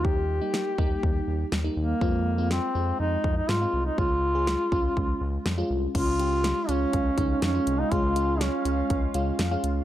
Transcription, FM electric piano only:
\new Staff \with { instrumentName = "FM electric piano" } { \time 4/4 \key des \lydian \tempo 4 = 122 <g bes ees'>8 r16 <g bes ees'>8 r16 <g bes ees'>4. r16 <g bes ees'>8 r16 | <aes c' f'>8 r16 <aes c' f'>8 r16 <aes c' f'>4. r16 <aes c' f'>8 r16 | <aes des' f'>8 r16 <aes des' aes'>8 r16 <aes des' f'>4. r16 <aes des' f'>8 r16 | <aes des' f'>8 <aes des' g'>8. r16 <aes des' f'>8. r16 <aes des' ees'>8 r16 <aes des' f'>8 r16 |
<aes des' aes'>8 <aes des' f'>8. r16 <aes des' f'>8. r16 <aes des' f'>8 r16 <aes des' f'>8 r16 | }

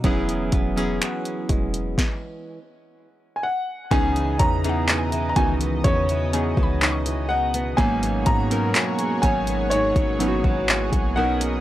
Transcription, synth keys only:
\new Staff \with { instrumentName = "Synth keys" } { \time 4/4 \key cis \dorian \tempo 4 = 62 <fis b cis' e' gis'>8 r16 <fis b cis' e' gis'>4~ <fis b cis' e' gis'>16 r2 | <e b cis' dis' gis'>8 r16 <e b cis' dis' gis'>8 r16 <dis e b cis' dis' fis'>8. r16 <e b cis' dis' gis'>4 r8 | <fis ais b cis' dis'>8 r16 <fis b cis' dis' ais'>8 r16 <fis b cis' dis' cis''>8. r16 <fis b cis' dis' e' fis'>8. r16 <fis b cis' dis' ais'>8 | }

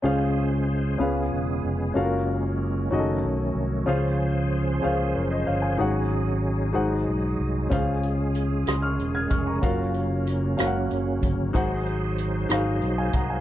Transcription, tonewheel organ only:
<<
  \new Staff \with { instrumentName = "Tonewheel organ" } { \time 6/8 \key des \major \tempo 4. = 63 << { aes'2. | ges2. | aes'2.~ | aes'2.~ |
aes'2. | ges2. | aes'2. | } \\ { des'2.~ | des'4. des'4.~ | des'2. | ees'2. |
des'2.~ | des'2. | ees'2. | } >> }
  \new Staff \with { instrumentName = "Tonewheel organ" } { \clef bass \time 6/8 \key des \major << { c''4. ces'4. | bes4. a4. | c''2. | r4. aes4.~ |
aes2. | bes2. | c''2. | } \\ { aes2.~ | aes4. ees4. | f2. | ges2. |
des2.~ | des2. | ges2. | } >> }
>>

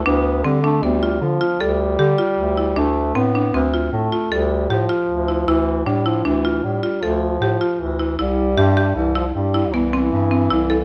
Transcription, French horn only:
\new Staff \with { instrumentName = "French horn" } { \clef bass \time 7/4 \key d \dorian \tempo 4 = 155 b4 g8 a8 g4 f4 g2. | a4 b4. r8 a4 g4 f2 | e4 g8 f8 e4 g4 f2 e4 | g2 e8 f8 g4 e2. | }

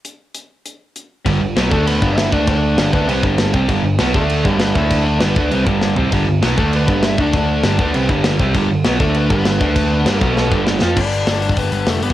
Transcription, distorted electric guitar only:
\new Staff \with { instrumentName = "Distorted electric guitar" } { \clef bass \time 4/4 \key g \major \tempo 4 = 198 r1 | <g, d g>8 <g, d>8 <b, fis b>8 <d a d'>4 <g, d g>4 <d a d'>8~ | <d a d'>4 <g, d g>8 <d a d'>8 <c g c'>8 <g, d g>4 <c g c'>8 | <g, d g>8 <g, d>8 <b, fis b>8 <d a d'>4 <g, d g>4 <d a d'>8~ |
<d a d'>4 <g, d g>8 <d a d'>8 <c g c'>8 <g, d g>4 <c g c'>8 | <g, d g>8 <g, d>8 <b, fis b>8 <d a d'>4 <g, d g>4 <d a d'>8~ | <d a d'>4 <g, d g>8 <d a d'>8 <c g c'>8 <g, d g>4 <c g c'>8 | <g, d g>8 <g, d>8 <b, fis b>8 <d a d'>4 <g, d g>4 <d a d'>8~ |
<d a d'>4 <g, d g>8 <b, fis b>4 <g, d g>4 <f c' f'>8 | r1 | }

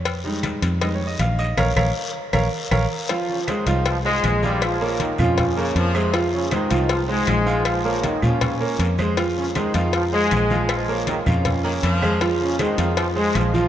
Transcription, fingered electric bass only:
\new Staff \with { instrumentName = "Fingered electric bass" } { \clef bass \time 4/4 \key bes \dorian \tempo 4 = 158 f,4. f,4. bes,,4 | bes,,8 bes,,8 r4 bes,,8 r8 bes,,8 r8 | r4. c,4. bes,,4~ | bes,,4. f,4. f,4~ |
f,4. c,4. bes,,4~ | bes,,4. bes,4. f,4~ | f,4. f,4. bes,,4~ | bes,,4. f,4. f,4~ |
f,4. f,4. bes,,4 | }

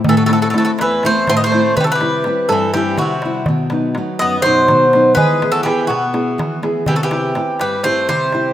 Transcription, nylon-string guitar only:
\new Staff \with { instrumentName = "Nylon-string guitar" } { \time 7/8 \tempo 4 = 123 a,8 <a c' e'>8 <a c' e'>8 e,8 <a c' e'>8 a,8 <a c' e'>8 | c8 <g c' e'>8 <g c' e'>8 g,8 <g c' e'>8 c8 <g c' e'>8 | b,8 <fis b dis'>8 <fis b dis'>8 fis,8 <b, fis dis'>8 b,8 <fis b dis'>8 | e8 <b e' gis'>8 <b e' gis'>8 b,8 <b e' gis'>8 e8 <b e' gis'>8 |
c8 <c' e' g'>8 <c' e' g'>8 g,8 <c' e' g'>8 c8 <c' e' g'>8 | }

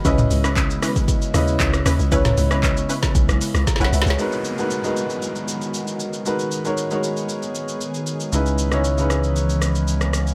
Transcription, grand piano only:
\new Staff \with { instrumentName = "Grand piano" } { \time 4/4 \key gis \minor \tempo 4 = 116 << { r1 | r2. r16 <cis'' fis''>16 <b' e''>16 <gis' cis''>16~ | <gis' cis''>16 r2. r8. | r1 |
r1 | } \\ { <cis cis' e' b' dis''>4. r4 <cis cis' e' b' dis''>4~ <cis cis' e' b' dis''>16 r16 | <cis cis' e' b' cis''>4. r2 r8 | <gis dis' fis' ais' b'>8 r16 <gis dis' fis' ais' b'>8 <gis dis' fis' ais' b'>4. r4 r16 | <gis dis' fis' ais' b'>8 r16 <gis dis' fis' ais' cis''>8 <gis dis' fis' ais' cis''>4. r4 r16 |
<cis cis' dis' e' b'>8 r16 <cis cis' dis' e' cis''>8 <cis cis' dis' e' b'>4. r4 r16 | } >> }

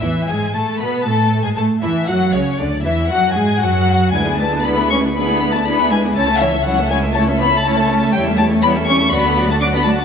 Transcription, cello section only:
\new Staff \with { instrumentName = "Cello section" } { \time 4/4 \key a \major \tempo 4 = 118 e8 gis8 a8 b8 a8. gis16 a8 e8 | fis8 cis8 d8 e8 fis8 gis8 fis4 | gis8 a8 b8 cis'8 b8. a16 b8 gis8 | a8 e8 fis8 gis8 a8 b8 a4 |
\key d \major g8 a8 b8 cis'8 b8. a16 d'16 b16 a8 | }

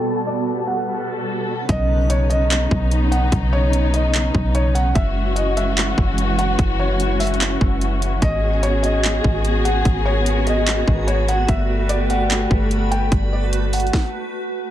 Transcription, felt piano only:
\new Staff \with { instrumentName = "Felt piano" } { \time 4/4 \key b \major \tempo 4 = 147 r8 d''4 fis''2~ fis''8 | dis''4 cis''8 dis''2 fis''8 | r8 cis''4 dis''4. cis''8 fis''8 | e''4 dis''8 e''2 fis''8 |
r8 cis''4 e''2~ e''8 | dis''4 cis''8 dis''2 fis''8 | r8 cis''4 dis''4. cis''8 fis''8 | e''4 d''8 fis''2 g''8 |
r8 d''4 fis''2~ fis''8 | }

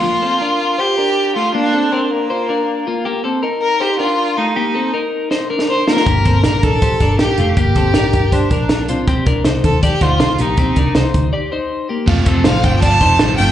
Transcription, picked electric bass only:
\new Staff \with { instrumentName = "Picked electric bass" } { \clef bass \time 4/4 \key bes \major \tempo 4 = 160 r1 | r1 | r1 | r1 |
g,,8 g,,8 bes,,8 a,,4 g,,8 bes,,8 f,,8 | g,,8 g,,8 a,,8 g,,4 bes,,4 c,8~ | c,8 c,8 c,8 ees,4 d,8 c,8 bes,,8 | c,8 c,8 c,8 d,8 r2 |
f,,8 f,,8 a,,8 g,,4 f,,8 a,,8 g,,8 | }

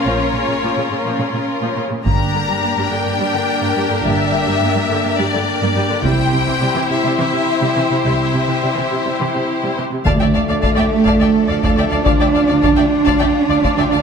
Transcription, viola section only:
\new Staff \with { instrumentName = "Viola section" } { \time 7/8 \key c \mixolydian \tempo 4 = 105 << { des'2.~ des'16 r16 | d'2.~ d'8~ | d'2.~ d'8 | e'2.~ e'8~ |
e'2.~ e'16 r16 | \key d \minor d''16 d''16 d''16 d''16 d''16 d''16 r16 d''16 d''16 r16 d''16 d''16 d''16 d''16 | d''16 d''16 d''16 d''16 d''16 d''16 r16 d''16 d''16 r16 d''16 d''16 d''16 d''16 | } \\ { f16 r16 des16 des16 f16 des16 des16 f16 des16 des16 r16 f16 des16 des16 | bes16 r16 d16 g16 bes16 g16 d16 bes16 g16 d16 r16 bes16 g16 d16 | bes16 r16 d16 g16 bes16 g16 d16 bes16 g16 d16 r16 bes16 g16 d16 | g16 r16 c16 e16 g16 e16 c16 g16 e16 c16 r16 g16 e16 c16 |
g16 r16 c16 e16 g16 e16 c16 g16 e16 c16 r16 g16 e16 c16 | d''16 d''16 d''16 d''16 d''16 d''16 r16 d''16 d''16 r16 d''16 d''16 d''16 d''16 | d''16 d''16 d''16 d''16 d''16 d''16 r16 d''16 d''16 r16 d''16 d''16 d''16 d''16 | } >> }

